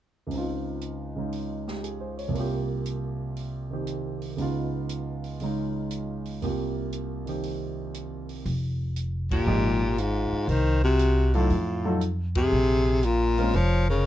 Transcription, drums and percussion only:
0.31 open hi-hat soft
0.81 closed hi-hat soft
1.32 open hi-hat soft
1.68 snare soft
1.84 closed hi-hat soft
2.19 open hi-hat soft
2.35 open hi-hat soft
2.86 closed hi-hat soft
3.37 open hi-hat soft
3.87 closed hi-hat soft
4.22 open hi-hat soft
4.38 open hi-hat soft
4.89 closed hi-hat soft
5.24 open hi-hat soft
5.40 open hi-hat soft
5.91 closed hi-hat soft
6.25 open hi-hat soft
6.42 open hi-hat soft
6.92 closed hi-hat soft
7.27 open hi-hat soft
7.43 open hi-hat soft
7.94 closed hi-hat soft
8.29 open hi-hat soft
8.45 open hi-hat soft
8.96 closed hi-hat soft
9.31 kick medium
9.31 ride medium
9.98 closed hi-hat soft
10.49 open hi-hat soft
10.99 closed hi-hat soft
11.34 open hi-hat soft
11.50 open hi-hat soft
12.01 closed hi-hat soft
12.35 kick medium
12.35 ride medium
13.03 closed hi-hat soft
13.38 open hi-hat soft
13.53 open hi-hat soft

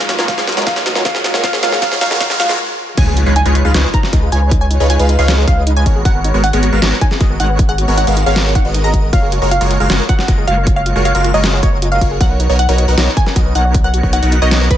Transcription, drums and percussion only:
0.09 snare medium
0.09 closed hi-hat medium
0.19 snare medium
0.28 kick loud
0.28 snare medium
0.28 closed hi-hat medium
0.38 snare medium
0.48 snare loud
0.48 closed hi-hat soft
0.52 closed hi-hat medium
0.57 snare medium
0.57 closed hi-hat soft
0.62 closed hi-hat medium
0.67 kick loud
0.67 snare loud
0.67 closed hi-hat medium
0.76 snare medium
0.86 snare loud
0.86 closed hi-hat medium
0.95 snare medium
1.05 kick loud
1.05 snare loud
1.05 closed hi-hat medium
1.15 snare medium
1.24 snare loud
1.24 closed hi-hat medium
1.34 snare medium
1.44 kick loud
1.44 snare loud
1.44 closed hi-hat medium
1.53 snare medium
1.63 snare loud
1.63 closed hi-hat medium
1.72 snare medium
1.82 kick loud
1.82 snare loud
1.82 closed hi-hat medium
1.92 snare medium
2.01 snare loud
2.01 closed hi-hat soft
2.06 closed hi-hat medium
2.11 snare medium
2.11 closed hi-hat medium
2.16 closed hi-hat medium
2.21 kick loud
2.21 snare loud
2.21 closed hi-hat medium
2.30 snare loud
2.40 snare loud
2.40 closed hi-hat medium
2.49 snare loud
2.98 kick loud
2.98 closed hi-hat medium
2.98 crash loud
3.17 closed hi-hat medium
3.36 closed hi-hat medium
3.46 closed hi-hat medium
3.55 closed hi-hat medium
3.74 snare loud
3.74 closed hi-hat medium
3.94 kick loud
3.94 closed hi-hat medium
4.03 snare soft
4.13 kick loud
4.13 closed hi-hat medium
4.32 closed hi-hat medium
4.51 kick loud
4.51 closed hi-hat medium
4.71 closed hi-hat medium
4.90 closed hi-hat medium
4.99 closed hi-hat medium
5.09 closed hi-hat medium
5.28 snare loud
5.28 closed hi-hat medium
5.48 kick loud
5.48 closed hi-hat medium
5.67 closed hi-hat medium
5.86 kick medium
5.86 closed hi-hat medium
6.05 kick loud
6.05 closed hi-hat medium
6.24 closed hi-hat medium
6.44 closed hi-hat medium
6.53 closed hi-hat medium
6.63 closed hi-hat medium
6.82 snare loud
6.82 closed hi-hat medium
7.01 kick loud
7.01 closed hi-hat medium
7.11 snare soft
7.21 kick loud
7.21 closed hi-hat medium
7.40 closed hi-hat medium
7.59 kick loud
7.59 closed hi-hat medium
7.78 closed hi-hat medium
7.98 closed hi-hat medium
8.07 closed hi-hat medium
8.17 closed hi-hat medium
8.36 snare loud
8.36 closed hi-hat medium
8.55 kick loud
8.55 closed hi-hat medium
8.74 closed hi-hat medium
8.94 kick medium
8.94 closed hi-hat medium
9.13 kick loud
9.13 closed hi-hat medium
9.32 closed hi-hat medium
9.51 closed hi-hat medium
9.61 closed hi-hat medium
9.71 closed hi-hat medium
9.90 snare loud
9.90 closed hi-hat medium
10.09 kick loud
10.09 closed hi-hat medium
10.19 snare soft
10.28 kick loud
10.28 closed hi-hat medium
10.48 closed hi-hat medium
10.67 kick loud
10.67 closed hi-hat medium
10.86 closed hi-hat medium
11.05 closed hi-hat medium
11.15 closed hi-hat medium
11.24 closed hi-hat medium
11.44 snare loud
11.44 closed hi-hat medium
11.63 kick loud
11.63 closed hi-hat medium
11.82 closed hi-hat medium
12.01 kick medium
12.01 closed hi-hat medium
12.21 kick loud
12.21 closed hi-hat medium
12.40 closed hi-hat medium
12.59 closed hi-hat medium
12.69 closed hi-hat medium
12.78 closed hi-hat medium
12.98 snare loud
12.98 closed hi-hat medium
13.17 kick loud
13.17 closed hi-hat medium
13.26 snare soft
13.36 kick loud
13.36 closed hi-hat medium
13.55 closed hi-hat medium
13.74 kick loud
13.74 closed hi-hat medium
13.94 closed hi-hat medium
14.03 kick medium
14.13 closed hi-hat medium
14.23 closed hi-hat medium
14.32 closed hi-hat medium
14.51 snare loud
14.51 closed hi-hat medium
14.71 kick loud
14.71 closed hi-hat medium

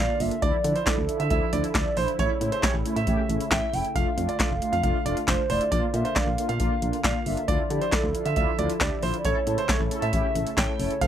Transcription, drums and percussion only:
0.20 open hi-hat medium
0.31 closed hi-hat medium
0.42 kick loud
0.42 closed hi-hat medium
0.64 closed hi-hat medium
0.76 closed hi-hat medium
0.87 kick loud
0.87 snare loud
0.87 clap medium
0.87 closed hi-hat medium
1.09 closed hi-hat medium
1.20 closed hi-hat medium
1.30 kick loud
1.30 closed hi-hat medium
1.53 closed hi-hat medium
1.64 closed hi-hat medium
1.75 kick loud
1.75 snare loud
1.75 clap medium
1.75 closed hi-hat medium
1.97 open hi-hat medium
2.08 closed hi-hat medium
2.19 kick loud
2.19 closed hi-hat medium
2.41 closed hi-hat medium
2.52 closed hi-hat medium
2.63 kick loud
2.63 snare loud
2.63 clap medium
2.63 closed hi-hat medium
2.86 closed hi-hat medium
2.96 closed hi-hat medium
3.07 kick loud
3.07 closed hi-hat medium
3.29 closed hi-hat medium
3.41 closed hi-hat medium
3.51 kick loud
3.51 snare loud
3.51 clap medium
3.51 closed hi-hat medium
3.73 open hi-hat medium
3.85 closed hi-hat medium
3.96 kick loud
3.96 closed hi-hat medium
4.18 closed hi-hat medium
4.29 closed hi-hat medium
4.40 kick loud
4.40 snare loud
4.40 clap medium
4.40 closed hi-hat medium
4.62 closed hi-hat medium
4.73 closed hi-hat medium
4.83 kick loud
4.83 closed hi-hat medium
5.06 closed hi-hat medium
5.17 closed hi-hat medium
5.28 kick loud
5.28 snare loud
5.28 clap medium
5.28 closed hi-hat medium
5.50 open hi-hat medium
5.61 closed hi-hat medium
5.72 kick loud
5.72 closed hi-hat medium
5.94 closed hi-hat medium
6.05 closed hi-hat medium
6.16 kick loud
6.16 snare loud
6.16 clap medium
6.16 closed hi-hat medium
6.38 closed hi-hat medium
6.49 closed hi-hat medium
6.60 kick loud
6.60 closed hi-hat medium
6.82 closed hi-hat medium
6.93 closed hi-hat medium
7.04 kick loud
7.04 snare loud
7.04 clap medium
7.04 closed hi-hat medium
7.26 open hi-hat medium
7.37 closed hi-hat medium
7.48 kick loud
7.48 closed hi-hat medium
7.70 closed hi-hat medium
7.82 closed hi-hat medium
7.92 kick loud
7.92 snare loud
7.92 clap medium
7.92 closed hi-hat medium
8.15 closed hi-hat medium
8.26 closed hi-hat medium
8.36 kick loud
8.36 closed hi-hat medium
8.59 closed hi-hat medium
8.70 closed hi-hat medium
8.81 kick loud
8.81 snare loud
8.81 clap medium
8.81 closed hi-hat medium
9.03 open hi-hat medium
9.14 closed hi-hat medium
9.25 kick loud
9.25 closed hi-hat medium
9.47 closed hi-hat medium
9.58 closed hi-hat medium
9.69 kick loud
9.69 snare loud
9.69 clap medium
9.69 closed hi-hat medium
9.91 closed hi-hat medium
10.02 closed hi-hat medium
10.13 kick loud
10.13 closed hi-hat medium
10.35 closed hi-hat medium
10.47 closed hi-hat medium
10.57 kick loud
10.57 snare loud
10.57 clap medium
10.57 closed hi-hat medium
10.80 open hi-hat medium
10.90 closed hi-hat medium
11.01 kick loud
11.01 closed hi-hat medium

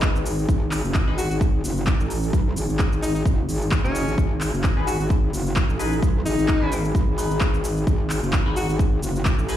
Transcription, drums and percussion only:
0.02 kick loud
0.02 clap loud
0.02 shaker soft
0.16 shaker soft
0.26 open hi-hat loud
0.26 shaker medium
0.39 shaker soft
0.49 kick loud
0.49 shaker soft
0.71 clap medium
0.71 open hi-hat loud
0.71 shaker medium
0.85 shaker soft
0.94 kick loud
0.94 clap loud
0.94 shaker soft
1.18 open hi-hat loud
1.18 shaker medium
1.31 shaker soft
1.41 kick loud
1.41 shaker soft
1.64 open hi-hat loud
1.64 shaker medium
1.77 shaker soft
1.87 kick loud
1.87 clap loud
1.87 shaker soft
2.00 shaker soft
2.10 open hi-hat loud
2.10 shaker medium
2.23 shaker soft
2.33 kick loud
2.33 shaker soft
2.56 open hi-hat loud
2.56 shaker medium
2.70 shaker soft
2.79 kick loud
2.79 clap loud
2.79 shaker soft
2.93 shaker soft
3.03 open hi-hat loud
3.03 shaker medium
3.16 shaker soft
3.25 kick loud
3.25 shaker soft
3.49 open hi-hat loud
3.49 shaker medium
3.62 shaker soft
3.72 kick loud
3.72 clap loud
3.72 shaker soft
3.85 shaker soft
3.95 open hi-hat loud
3.95 shaker medium
4.08 shaker soft
4.18 kick loud
4.18 shaker soft
4.41 clap medium
4.41 open hi-hat loud
4.41 shaker medium
4.54 shaker soft
4.64 kick loud
4.64 clap loud
4.64 shaker soft
4.87 open hi-hat loud
4.87 shaker medium
5.00 shaker soft
5.10 kick loud
5.10 shaker soft
5.33 open hi-hat loud
5.33 shaker medium
5.47 shaker soft
5.56 kick loud
5.56 clap loud
5.56 shaker soft
5.70 shaker soft
5.79 open hi-hat loud
5.79 shaker medium
5.93 shaker soft
6.02 kick loud
6.02 shaker soft
6.26 open hi-hat loud
6.26 shaker medium
6.39 shaker soft
6.48 kick loud
6.48 clap loud
6.48 shaker soft
6.72 open hi-hat loud
6.72 shaker medium
6.85 shaker soft
6.95 kick loud
6.95 shaker soft
7.18 open hi-hat loud
7.18 shaker medium
7.31 shaker soft
7.41 kick loud
7.41 clap loud
7.41 shaker soft
7.54 shaker soft
7.64 open hi-hat loud
7.64 shaker medium
7.77 shaker soft
7.87 kick loud
7.87 shaker soft
8.10 clap medium
8.10 open hi-hat loud
8.10 shaker medium
8.23 shaker soft
8.33 kick loud
8.33 clap loud
8.33 shaker soft
8.56 open hi-hat loud
8.56 shaker medium
8.70 shaker soft
8.79 kick loud
8.79 shaker soft
9.02 open hi-hat loud
9.02 shaker medium
9.16 shaker soft
9.25 kick loud
9.25 clap loud
9.25 shaker soft
9.39 shaker soft
9.49 open hi-hat loud
9.49 shaker medium

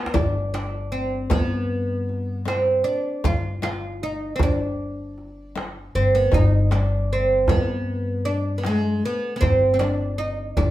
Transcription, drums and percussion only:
0.06 tombak ka medium
0.14 frame drum medium
0.14 tombak dum medium
0.55 tombak tek medium
1.30 frame drum medium
1.30 tombak dum medium
2.09 tombak ka soft
2.45 tombak tek medium
2.45 frame drum medium
2.88 tombak ka soft
3.24 frame drum medium
3.24 tombak dum medium
3.62 tombak tek medium
3.62 frame drum medium
4.39 frame drum medium
4.39 tombak dum medium
5.18 tombak ka soft
5.56 tombak tek medium
5.56 frame drum medium
5.95 tombak ka soft
6.32 frame drum medium
6.32 tombak dum medium
6.71 tombak tek medium
6.71 frame drum medium
7.48 tombak dum medium
7.48 frame drum medium
8.26 tombak ka soft
8.63 tombak tek medium
8.63 frame drum medium
9.04 tombak ka soft
9.42 tombak dum medium
9.42 frame drum medium
9.80 tombak tek medium
9.80 frame drum medium
10.01 tombak ka soft
10.20 tombak ka soft
10.37 tombak ka soft
10.57 tombak dum medium
10.57 frame drum medium

